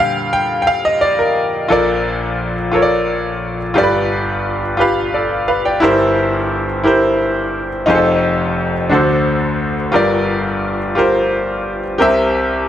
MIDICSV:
0, 0, Header, 1, 2, 480
1, 0, Start_track
1, 0, Key_signature, -2, "major"
1, 0, Tempo, 686499
1, 1194, Time_signature, 6, 3, 24, 8
1, 8869, End_track
2, 0, Start_track
2, 0, Title_t, "Grand piano"
2, 0, Program_c, 0, 0
2, 0, Control_c, 0, 64, 127
2, 0, Note_on_c, 0, 46, 56
2, 0, Note_on_c, 0, 50, 48
2, 0, Note_on_c, 0, 55, 62
2, 0, Note_on_c, 0, 77, 104
2, 0, Note_on_c, 0, 79, 102
2, 230, Note_off_c, 0, 79, 0
2, 230, Note_on_c, 0, 79, 91
2, 241, Note_off_c, 0, 77, 0
2, 278, Note_off_c, 0, 79, 0
2, 434, Note_on_c, 0, 79, 70
2, 469, Note_on_c, 0, 77, 92
2, 470, Note_off_c, 0, 79, 0
2, 584, Note_off_c, 0, 77, 0
2, 594, Note_on_c, 0, 75, 81
2, 707, Note_on_c, 0, 74, 80
2, 718, Note_off_c, 0, 75, 0
2, 831, Note_on_c, 0, 70, 64
2, 835, Note_off_c, 0, 74, 0
2, 885, Note_off_c, 0, 70, 0
2, 1161, Note_off_c, 0, 46, 0
2, 1164, Note_off_c, 0, 50, 0
2, 1166, Note_off_c, 0, 55, 0
2, 1178, Note_on_c, 0, 65, 77
2, 1186, Note_on_c, 0, 69, 71
2, 1190, Note_on_c, 0, 34, 62
2, 1191, Note_on_c, 0, 46, 57
2, 1196, Note_on_c, 0, 70, 69
2, 1204, Control_c, 0, 64, 0
2, 1204, Note_on_c, 0, 74, 77
2, 1329, Control_c, 0, 64, 127
2, 1772, Note_off_c, 0, 65, 0
2, 1776, Note_off_c, 0, 69, 0
2, 1781, Note_off_c, 0, 70, 0
2, 1785, Note_off_c, 0, 74, 0
2, 1898, Note_on_c, 0, 65, 65
2, 1908, Note_on_c, 0, 69, 61
2, 1916, Note_on_c, 0, 70, 59
2, 1928, Note_on_c, 0, 73, 57
2, 1966, Note_off_c, 0, 73, 0
2, 1973, Note_on_c, 0, 74, 72
2, 2492, Note_off_c, 0, 65, 0
2, 2497, Note_off_c, 0, 69, 0
2, 2501, Note_off_c, 0, 70, 0
2, 2530, Note_off_c, 0, 74, 0
2, 2603, Note_off_c, 0, 34, 0
2, 2603, Note_off_c, 0, 46, 0
2, 2616, Note_on_c, 0, 65, 74
2, 2624, Note_on_c, 0, 67, 71
2, 2627, Note_on_c, 0, 43, 65
2, 2628, Note_on_c, 0, 31, 60
2, 2633, Note_on_c, 0, 69, 53
2, 2643, Control_c, 0, 64, 0
2, 2643, Note_on_c, 0, 74, 86
2, 2678, Note_off_c, 0, 69, 0
2, 2679, Note_on_c, 0, 71, 72
2, 2749, Control_c, 0, 64, 127
2, 3211, Note_off_c, 0, 65, 0
2, 3215, Note_off_c, 0, 67, 0
2, 3224, Note_off_c, 0, 74, 0
2, 3242, Note_off_c, 0, 71, 0
2, 3336, Note_on_c, 0, 65, 69
2, 3348, Note_on_c, 0, 67, 65
2, 3356, Note_on_c, 0, 71, 63
2, 3364, Note_on_c, 0, 77, 76
2, 3594, Note_off_c, 0, 71, 0
2, 3595, Note_on_c, 0, 74, 55
2, 3596, Note_on_c, 0, 69, 46
2, 3598, Note_off_c, 0, 77, 0
2, 3822, Note_off_c, 0, 69, 0
2, 3822, Note_off_c, 0, 74, 0
2, 3831, Note_on_c, 0, 77, 61
2, 3832, Note_on_c, 0, 71, 52
2, 3931, Note_off_c, 0, 65, 0
2, 3937, Note_off_c, 0, 67, 0
2, 3946, Note_off_c, 0, 71, 0
2, 3946, Note_off_c, 0, 77, 0
2, 3953, Note_on_c, 0, 79, 60
2, 3955, Note_on_c, 0, 74, 50
2, 4041, Note_off_c, 0, 43, 0
2, 4042, Note_off_c, 0, 31, 0
2, 4056, Note_on_c, 0, 64, 81
2, 4067, Note_on_c, 0, 67, 74
2, 4070, Note_on_c, 0, 43, 66
2, 4072, Note_on_c, 0, 31, 67
2, 4075, Note_on_c, 0, 70, 70
2, 4082, Control_c, 0, 64, 0
2, 4082, Note_on_c, 0, 72, 94
2, 4180, Note_off_c, 0, 79, 0
2, 4181, Note_off_c, 0, 74, 0
2, 4209, Control_c, 0, 64, 127
2, 4651, Note_off_c, 0, 64, 0
2, 4656, Note_off_c, 0, 67, 0
2, 4660, Note_off_c, 0, 70, 0
2, 4664, Note_off_c, 0, 72, 0
2, 4779, Note_on_c, 0, 64, 68
2, 4785, Note_on_c, 0, 67, 61
2, 4793, Note_on_c, 0, 70, 63
2, 4806, Note_on_c, 0, 72, 74
2, 5372, Note_off_c, 0, 64, 0
2, 5375, Note_off_c, 0, 67, 0
2, 5379, Note_off_c, 0, 70, 0
2, 5386, Note_off_c, 0, 72, 0
2, 5483, Note_off_c, 0, 43, 0
2, 5484, Note_off_c, 0, 31, 0
2, 5495, Note_on_c, 0, 63, 78
2, 5502, Note_on_c, 0, 65, 70
2, 5507, Note_on_c, 0, 29, 66
2, 5510, Note_on_c, 0, 41, 67
2, 5512, Note_on_c, 0, 68, 59
2, 5522, Control_c, 0, 64, 0
2, 5522, Note_on_c, 0, 72, 84
2, 5557, Note_off_c, 0, 68, 0
2, 5558, Note_on_c, 0, 69, 66
2, 5665, Control_c, 0, 64, 127
2, 6091, Note_off_c, 0, 63, 0
2, 6094, Note_off_c, 0, 65, 0
2, 6104, Note_off_c, 0, 72, 0
2, 6122, Note_off_c, 0, 69, 0
2, 6202, Note_off_c, 0, 29, 0
2, 6203, Note_off_c, 0, 41, 0
2, 6219, Note_on_c, 0, 62, 63
2, 6226, Note_on_c, 0, 66, 59
2, 6230, Note_on_c, 0, 38, 62
2, 6232, Note_on_c, 0, 50, 60
2, 6238, Note_on_c, 0, 69, 59
2, 6240, Control_c, 0, 64, 0
2, 6245, Note_on_c, 0, 72, 69
2, 6359, Control_c, 0, 64, 127
2, 6812, Note_off_c, 0, 62, 0
2, 6816, Note_off_c, 0, 66, 0
2, 6822, Note_off_c, 0, 69, 0
2, 6825, Note_off_c, 0, 72, 0
2, 6923, Note_off_c, 0, 38, 0
2, 6924, Note_off_c, 0, 50, 0
2, 6934, Note_on_c, 0, 65, 79
2, 6942, Note_on_c, 0, 67, 68
2, 6948, Note_on_c, 0, 31, 62
2, 6949, Note_on_c, 0, 43, 64
2, 6951, Note_on_c, 0, 70, 68
2, 6961, Control_c, 0, 64, 0
2, 6961, Note_on_c, 0, 74, 84
2, 7067, Control_c, 0, 64, 127
2, 7530, Note_off_c, 0, 65, 0
2, 7534, Note_off_c, 0, 67, 0
2, 7539, Note_off_c, 0, 70, 0
2, 7544, Note_off_c, 0, 74, 0
2, 7658, Note_on_c, 0, 65, 60
2, 7663, Note_on_c, 0, 67, 60
2, 7674, Note_on_c, 0, 70, 63
2, 7683, Note_on_c, 0, 72, 73
2, 8252, Note_off_c, 0, 65, 0
2, 8255, Note_off_c, 0, 67, 0
2, 8260, Note_off_c, 0, 70, 0
2, 8265, Note_off_c, 0, 72, 0
2, 8363, Note_off_c, 0, 31, 0
2, 8363, Note_off_c, 0, 43, 0
2, 8379, Note_on_c, 0, 67, 79
2, 8386, Note_on_c, 0, 70, 70
2, 8393, Note_on_c, 0, 36, 67
2, 8393, Note_on_c, 0, 48, 62
2, 8396, Note_on_c, 0, 72, 69
2, 8400, Control_c, 0, 64, 0
2, 8403, Note_on_c, 0, 76, 89
2, 8531, Control_c, 0, 64, 127
2, 8869, Note_off_c, 0, 36, 0
2, 8869, Note_off_c, 0, 48, 0
2, 8869, Note_off_c, 0, 67, 0
2, 8869, Note_off_c, 0, 70, 0
2, 8869, Note_off_c, 0, 72, 0
2, 8869, Note_off_c, 0, 76, 0
2, 8869, End_track
0, 0, End_of_file